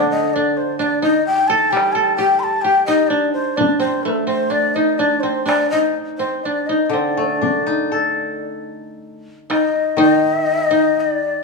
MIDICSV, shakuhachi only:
0, 0, Header, 1, 2, 480
1, 0, Start_track
1, 0, Tempo, 931677
1, 903, Time_signature, 4, 2, 24, 8
1, 1855, Tempo, 946372
1, 3295, Tempo, 988468
1, 3775, Tempo, 1036269
1, 4735, Tempo, 988468
1, 5674, End_track
2, 0, Start_track
2, 0, Title_t, "Shakuhachi"
2, 0, Program_c, 0, 77
2, 58, Note_on_c, 0, 75, 82
2, 173, Note_on_c, 0, 74, 81
2, 180, Note_off_c, 0, 75, 0
2, 294, Note_on_c, 0, 72, 71
2, 302, Note_off_c, 0, 74, 0
2, 403, Note_off_c, 0, 72, 0
2, 406, Note_on_c, 0, 75, 81
2, 424, Note_on_c, 0, 74, 88
2, 429, Note_off_c, 0, 75, 0
2, 525, Note_off_c, 0, 74, 0
2, 529, Note_on_c, 0, 75, 88
2, 647, Note_off_c, 0, 75, 0
2, 651, Note_on_c, 0, 79, 102
2, 761, Note_on_c, 0, 81, 91
2, 768, Note_off_c, 0, 79, 0
2, 882, Note_on_c, 0, 79, 90
2, 889, Note_off_c, 0, 81, 0
2, 993, Note_on_c, 0, 81, 86
2, 1001, Note_off_c, 0, 79, 0
2, 1113, Note_off_c, 0, 81, 0
2, 1116, Note_on_c, 0, 79, 91
2, 1233, Note_on_c, 0, 84, 80
2, 1241, Note_off_c, 0, 79, 0
2, 1255, Note_on_c, 0, 81, 87
2, 1260, Note_off_c, 0, 84, 0
2, 1350, Note_on_c, 0, 79, 95
2, 1357, Note_off_c, 0, 81, 0
2, 1472, Note_off_c, 0, 79, 0
2, 1475, Note_on_c, 0, 75, 78
2, 1584, Note_on_c, 0, 74, 72
2, 1592, Note_off_c, 0, 75, 0
2, 1714, Note_off_c, 0, 74, 0
2, 1717, Note_on_c, 0, 72, 78
2, 1836, Note_on_c, 0, 74, 87
2, 1844, Note_off_c, 0, 72, 0
2, 1949, Note_off_c, 0, 74, 0
2, 1952, Note_on_c, 0, 72, 78
2, 2075, Note_on_c, 0, 69, 69
2, 2082, Note_off_c, 0, 72, 0
2, 2195, Note_off_c, 0, 69, 0
2, 2199, Note_on_c, 0, 72, 79
2, 2317, Note_on_c, 0, 74, 92
2, 2325, Note_off_c, 0, 72, 0
2, 2437, Note_on_c, 0, 75, 81
2, 2444, Note_off_c, 0, 74, 0
2, 2557, Note_on_c, 0, 74, 81
2, 2565, Note_off_c, 0, 75, 0
2, 2668, Note_on_c, 0, 72, 72
2, 2676, Note_off_c, 0, 74, 0
2, 2795, Note_off_c, 0, 72, 0
2, 2798, Note_on_c, 0, 74, 79
2, 2915, Note_off_c, 0, 74, 0
2, 2921, Note_on_c, 0, 75, 77
2, 3038, Note_off_c, 0, 75, 0
2, 3163, Note_on_c, 0, 72, 66
2, 3282, Note_off_c, 0, 72, 0
2, 3288, Note_on_c, 0, 75, 76
2, 3304, Note_on_c, 0, 74, 83
2, 3309, Note_off_c, 0, 75, 0
2, 3405, Note_on_c, 0, 75, 74
2, 3412, Note_off_c, 0, 74, 0
2, 3499, Note_off_c, 0, 75, 0
2, 3499, Note_on_c, 0, 75, 56
2, 3530, Note_on_c, 0, 74, 65
2, 3537, Note_off_c, 0, 75, 0
2, 4253, Note_off_c, 0, 74, 0
2, 4742, Note_on_c, 0, 75, 74
2, 4965, Note_off_c, 0, 75, 0
2, 4985, Note_on_c, 0, 75, 102
2, 5464, Note_on_c, 0, 74, 82
2, 5471, Note_off_c, 0, 75, 0
2, 5674, Note_off_c, 0, 74, 0
2, 5674, End_track
0, 0, End_of_file